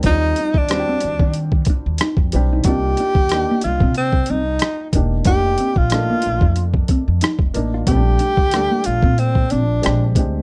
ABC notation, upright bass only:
X:1
M:4/4
L:1/16
Q:"Swing 16ths" 1/4=92
K:Bb
V:1 name="Upright bass" clef=bass
E,,2 z E,,2 z E,, E,3 z E,, z F,, _C,,2 | C,,2 z E,,2 z C,, C,3 C,,2 z2 =E,,,2 | F,,,2 z B,,,2 z B,,, F,,3 z F,, z F,,, A,,,2 | B,,,2 z D,,2 z B,,, B,,3 B,,,2 B,,,2 D,,2 |]